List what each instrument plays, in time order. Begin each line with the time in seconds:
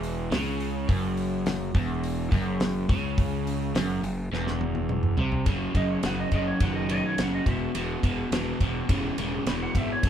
Already playing: fingered electric bass E1, overdriven electric guitar E2
0.03 open hi-hat
0.31 fingered electric bass C#2, overdriven electric guitar C#3, snare, open hi-hat
0.60 open hi-hat
0.89 fingered electric bass F#1, overdriven electric guitar F#2, kick, open hi-hat
1.17 open hi-hat
1.46 snare, open hi-hat
1.75 fingered electric bass E1, overdriven electric guitar E2, kick, open hi-hat
2.04 open hi-hat
2.32 fingered electric bass F#1, overdriven electric guitar F#2, kick, open hi-hat
2.60 snare, open hi-hat
2.89 fingered electric bass C#2, overdriven electric guitar C#3, kick, open hi-hat
3.18 kick, open hi-hat
3.47 open hi-hat
3.75 fingered electric bass F#1, overdriven electric guitar F#2, snare, open hi-hat
4.03 fingered electric bass F#1, overdriven electric guitar F#2, open hi-hat
4.32 fingered electric bass E1, overdriven electric guitar E2, snare
4.47 snare
4.61 high tom
4.75 high tom
4.89 mid tom
5.03 mid tom
5.17 fingered electric bass C2, overdriven electric guitar C3, floor tom
5.32 floor tom
5.46 fingered electric bass F#1, overdriven electric guitar F#2 C#3, kick, ride
5.75 fingered electric bass F#1, overdriven electric guitar F#2 C#3, electric slide guitar D#5, kick, ride
5.91 electric slide guitar C#5
6.03 fingered electric bass F#1, overdriven electric guitar F#2 C#3, electric slide guitar F#5, snare, ride
6.20 electric slide guitar D#5
6.32 fingered electric bass F#1, overdriven electric guitar F#2 C#3, electric slide guitar D#5, kick, ride
6.47 electric slide guitar C#5
6.60 fingered electric bass F#1, overdriven electric guitar F#2 D#3, electric slide guitar F#5, kick, ride
6.75 electric slide guitar D#5
6.89 overdriven electric guitar F#2 D#3, electric slide guitar D#5, ride
7.06 electric slide guitar C#5
7.18 fingered electric bass F#1, overdriven electric guitar F#2 C#3, electric slide guitar F#5, snare, ride
7.34 electric slide guitar D#5
7.46 fingered electric bass E1, overdriven electric guitar E2 B2, electric slide guitar E5, kick, ride
7.75 fingered electric bass E1, overdriven electric guitar E2 B2, ride
8.03 fingered electric bass E1, overdriven electric guitar E2 B2, kick, ride
8.31 fingered electric bass E1, overdriven electric guitar E2 B2, snare, ride
8.60 fingered electric bass E1, overdriven electric guitar E2 B2, kick, ride
8.89 fingered electric bass E1, overdriven electric guitar E2 C#3, kick, ride
9.17 fingered electric bass E1, overdriven electric guitar E2 C#3, ride
9.46 fingered electric bass E1, overdriven electric guitar E2 B2, electric slide guitar B5, snare, ride
9.63 electric slide guitar F#5
9.75 fingered electric bass G#1, overdriven electric guitar E2 B2, electric slide guitar E5, kick, ride
9.92 electric slide guitar C#5
10.03 fingered electric bass F#1, overdriven electric guitar F#2 C#3, kick, ride